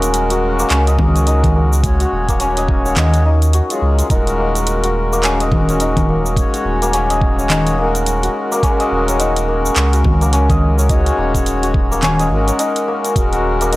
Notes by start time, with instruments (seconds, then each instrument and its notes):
Already playing: sub bass D#1, harmonium G#3 C#4 F#4 A#4, santur A#3 C#4 D#4 F#4 C#5 D#5
0.02 closed hi-hat, cabasa
0.14 closed hi-hat, cabasa
0.30 santur F#4, closed hi-hat, cabasa
0.59 santur A#3, cabasa
0.70 sub bass C#2, santur C#4, clap, closed hi-hat, cabasa
0.87 santur D#5, closed hi-hat, cabasa
0.97 harmonium G#3 C#4 F#4 A#4, kick, low conga
1.16 santur C#5, closed hi-hat, cabasa
1.27 santur D#4, closed hi-hat, cabasa
1.44 kick, closed hi-hat, low conga, cabasa
1.56 santur A#3
1.73 cabasa
1.82 harmonium G#3 C#4 F#4, kick, closed hi-hat, cabasa
1.86 harmonium C#5
2.00 santur F#4, closed hi-hat, cabasa
2.12 sub bass D#1
2.29 santur A#3, kick, closed hi-hat, cabasa
2.40 santur C#4, closed hi-hat, cabasa
2.57 santur D#5, closed hi-hat, cabasa
2.68 kick
2.86 santur C#5, cabasa
2.97 sub bass D#2, santur D#4, clap, closed hi-hat, low conga, cabasa
3.14 closed hi-hat, cabasa
3.26 santur D#4
3.42 closed hi-hat, cabasa
3.53 santur F#4, closed hi-hat, cabasa
3.69 harmonium F#3 G#3 C#4 G#4, santur F4, closed hi-hat, cabasa
3.82 sub bass C#2
3.99 santur F4, closed hi-hat, cabasa
4.08 sub bass D#1, harmonium G#3 C#4 F#4, santur D#4, kick, closed hi-hat, cabasa
4.12 harmonium A#4
4.27 closed hi-hat, cabasa
4.39 santur A#3
4.55 closed hi-hat, cabasa
4.67 closed hi-hat, cabasa
4.84 santur F#4, closed hi-hat, cabasa
5.13 santur A#3, cabasa
5.23 santur C#4, clap, closed hi-hat, cabasa
5.40 santur D#5, closed hi-hat, cabasa
5.50 harmonium G#3 C#4 F#4 A#4, kick, low conga
5.69 santur C#5, closed hi-hat, cabasa
5.80 santur D#4, closed hi-hat, cabasa
5.97 kick, closed hi-hat, low conga, cabasa
6.09 santur A#3
6.26 cabasa
6.35 harmonium G#3 C#4 F#4, kick, closed hi-hat, cabasa
6.39 harmonium C#5
6.54 santur F#4, closed hi-hat, cabasa
6.65 sub bass D#1
6.82 santur A#3, closed hi-hat, cabasa
6.93 santur C#4, closed hi-hat, cabasa
7.10 santur D#5, closed hi-hat, cabasa
7.21 kick
7.39 santur C#5, cabasa
7.50 santur D#4, clap, closed hi-hat, low conga, cabasa
7.67 closed hi-hat, cabasa
7.76 harmonium G#3 C#4 F#4, santur A#3
7.81 harmonium A#4
7.95 closed hi-hat, cabasa
8.06 closed hi-hat, cabasa
8.23 santur F#4, closed hi-hat, cabasa
8.52 santur A#3, cabasa
8.61 harmonium G#3 C#4 F#4 A#4, santur C#4, kick, closed hi-hat, cabasa
8.80 santur D#5, closed hi-hat, cabasa
8.91 sub bass D#1
9.08 santur C#5, closed hi-hat, cabasa
9.20 santur D#4, closed hi-hat, cabasa
9.36 closed hi-hat, cabasa
9.48 santur A#3
9.66 cabasa
9.76 sub bass C#2, clap, closed hi-hat, cabasa
9.93 santur F#4, closed hi-hat, cabasa
10.03 harmonium G#3 C#4 F#4, kick, low conga
10.07 harmonium A#4
10.21 santur A#3, closed hi-hat, cabasa
10.33 santur C#4, closed hi-hat, cabasa
10.50 santur D#5, kick, closed hi-hat, low conga, cabasa
10.78 santur C#5, cabasa
10.88 harmonium G#3 C#4 F#4 C#5, santur D#4, kick, closed hi-hat, cabasa
11.06 closed hi-hat, cabasa
11.18 sub bass D#1, santur A#3
11.35 kick, closed hi-hat, cabasa
11.46 closed hi-hat, cabasa
11.63 santur F#4, closed hi-hat, cabasa
11.74 kick
11.91 santur A#3, cabasa
12.03 santur C#4, clap, closed hi-hat, low conga, cabasa
12.19 santur D#5, closed hi-hat, cabasa
12.29 sub bass G#1, harmonium G#3 C#4 F#4 A#4
12.48 santur C#5, closed hi-hat, cabasa
12.59 santur D#4, closed hi-hat, cabasa
12.76 closed hi-hat, cabasa
12.88 santur A#3
13.05 closed hi-hat, cabasa
13.14 sub bass D#1, harmonium G#3 C#4 F#4, kick, closed hi-hat, cabasa
13.18 harmonium A#4
13.33 santur F#4, closed hi-hat, cabasa
13.61 santur A#3, closed hi-hat, cabasa
13.73 santur D#4, closed hi-hat, cabasa